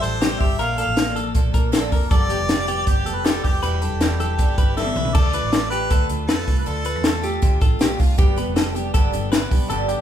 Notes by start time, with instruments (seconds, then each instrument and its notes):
0.02 fingered electric bass A1, steel-string acoustic guitar G3 E4 A4, clean electric guitar A4, harmonica C5, closed hi-hat
0.21 steel-string acoustic guitar C3 E3 G3 E4 A4, clean electric guitar G4, snare, closed hi-hat
0.40 fingered electric bass G1, steel-string acoustic guitar G3 E4 A4, clean electric guitar G4, harmonica E5, kick, open hi-hat
0.59 fingered electric bass A#1, steel-string acoustic guitar A#2 D3 F3 A#3 D4 A4, clean electric guitar A#4, harmonica F5, closed hi-hat
0.77 steel-string acoustic guitar F3 A#3 D4 A4, clean electric guitar A4, harmonica F5, closed hi-hat
0.87 fingered electric bass A1
0.96 steel-string acoustic guitar A#2 D3 F3 A#3 D4 A4, snare, closed hi-hat
1.15 steel-string acoustic guitar F3 A#3 D4 A4, clean electric guitar A4, closed hi-hat
1.34 fingered electric bass A#1, steel-string acoustic guitar F3 A#3 D4 A4, kick, closed hi-hat
1.53 fingered electric bass A#1, steel-string acoustic guitar F3 A#3 D4 A4, clean electric guitar A#4, kick, closed hi-hat
1.72 steel-string acoustic guitar A#2 D3 F3 A#3 D4 A4, clean electric guitar A4, snare, closed hi-hat
1.91 fingered electric bass F1, steel-string acoustic guitar F3 A#3 D4 A4, clean electric guitar A#4, kick, open hi-hat
2.11 fingered electric bass G1, steel-string acoustic guitar G2 D3 F3 G3 B3 G4, clean electric guitar A4, harmonica D5, kick, closed hi-hat
2.29 steel-string acoustic guitar F3 G3 B3 G4, clean electric guitar G4, closed hi-hat
2.40 fingered electric bass F1
2.49 steel-string acoustic guitar G2 D3 F3 G3 B3 G4, snare, closed hi-hat
2.68 steel-string acoustic guitar F3 G3 B3 G4, clean electric guitar G4, closed hi-hat
2.86 fingered electric bass G1, steel-string acoustic guitar F3 G3 B3 G4, harmonica G4, kick, closed hi-hat
3.05 fingered electric bass F1, steel-string acoustic guitar F3 G3 B3 G4, clean electric guitar A4, closed hi-hat
3.16 harmonica B4
3.24 steel-string acoustic guitar G2 D3 F3 G3 B3 G4, clean electric guitar G4, harmonica A4, snare, closed hi-hat
3.44 fingered electric bass F1, steel-string acoustic guitar F3 G3 B3 G4, clean electric guitar G4, harmonica G4, kick, open hi-hat
3.62 fingered electric bass E1, steel-string acoustic guitar E2 B2 E3 G3 D4 E4, clean electric guitar B4, closed hi-hat
3.82 steel-string acoustic guitar E3 G3 D4 E4, clean electric guitar A4, closed hi-hat
3.92 fingered electric bass E1
4.00 steel-string acoustic guitar E2 B2 E3 G3 D4 E4, snare, closed hi-hat
4.20 steel-string acoustic guitar E3 G3 D4 E4, clean electric guitar A4, closed hi-hat
4.39 fingered electric bass G1, steel-string acoustic guitar E3 G3 D4 E4, kick, closed hi-hat
4.58 fingered electric bass G1, steel-string acoustic guitar E3 G3 D4 E4, clean electric guitar B4, kick, closed hi-hat
4.77 steel-string acoustic guitar E2 B2 E3 G3 D4 E4, clean electric guitar A4, harmonica E5, snare
4.86 high tom
4.95 fingered electric bass C2, steel-string acoustic guitar E3 G3 D4 E4, clean electric guitar B4, mid tom
5.05 floor tom
5.15 fingered electric bass D2, steel-string acoustic guitar D3 A3 D4 F4, clean electric guitar A4, harmonica D5, kick, crash
5.33 steel-string acoustic guitar A3 D4 F4, clean electric guitar B4, closed hi-hat
5.43 fingered electric bass A1
5.52 steel-string acoustic guitar D3 A3 D4 F4, clean electric guitar A4, snare, closed hi-hat
5.70 steel-string acoustic guitar A3 D4 F4, clean electric guitar G4, harmonica B4, closed hi-hat
5.90 fingered electric bass D2, steel-string acoustic guitar D3 A3 D4 F4, clean electric guitar A4, kick, closed hi-hat
6.09 fingered electric bass D2, steel-string acoustic guitar A3 D4 F4, closed hi-hat
6.27 fingered electric bass F2, steel-string acoustic guitar D3 D4 F4, harmonica A4, clean electric guitar B4, snare, closed hi-hat
6.47 fingered electric bass C2, steel-string acoustic guitar A3 D4 F4, kick, open hi-hat
6.59 harmonica B4
6.65 fingered electric bass D2, steel-string acoustic guitar D3 A3 D4 F4, harmonica A4, clean electric guitar A4, closed hi-hat
6.84 steel-string acoustic guitar A3 D4 F4, clean electric guitar B4, closed hi-hat
6.96 fingered electric bass E2
7.04 steel-string acoustic guitar D3 A3 D4 F4, clean electric guitar A4, snare, closed hi-hat
7.22 steel-string acoustic guitar A3 D4 F4, clean electric guitar G4, closed hi-hat
7.42 fingered electric bass D2, steel-string acoustic guitar D3 A3 D4 F4, kick, closed hi-hat
7.61 fingered electric bass A1, steel-string acoustic guitar A3 D4 F4, clean electric guitar A4, kick, closed hi-hat
7.79 fingered electric bass B1, steel-string acoustic guitar D3 A3 D4 F4, clean electric guitar G4, snare, closed hi-hat
7.99 fingered electric bass C2, steel-string acoustic guitar A3 D4 F4, clean electric guitar F4, kick, open hi-hat
8.18 fingered electric bass G1, steel-string acoustic guitar G2 D3 G3 B3 D4 G4, clean electric guitar G4, kick, closed hi-hat
8.36 steel-string acoustic guitar G3 B3 D4 G4, clean electric guitar B4, closed hi-hat
8.47 fingered electric bass F1
8.56 steel-string acoustic guitar G3 B3 D4 G4, clean electric guitar A4, snare, closed hi-hat
8.74 steel-string acoustic guitar G3 B3 D4 G4, clean electric guitar G4, closed hi-hat
8.94 fingered electric bass G1, steel-string acoustic guitar G2 D3 G3 B3 D4 G4, clean electric guitar A4, kick, closed hi-hat
9.12 fingered electric bass G1, steel-string acoustic guitar G3 B3 D4 G4, closed hi-hat
9.32 steel-string acoustic guitar G3 B3 D4 G4, clean electric guitar B4, snare, closed hi-hat
9.51 fingered electric bass B1, steel-string acoustic guitar G3 B3 D4 G4, kick, open hi-hat
9.70 fingered electric bass G1, steel-string acoustic guitar G2 D3 G3 B3 D4 G4, clean electric guitar A4, closed hi-hat
9.89 steel-string acoustic guitar G3 B3 D4 G4, clean electric guitar G4, closed hi-hat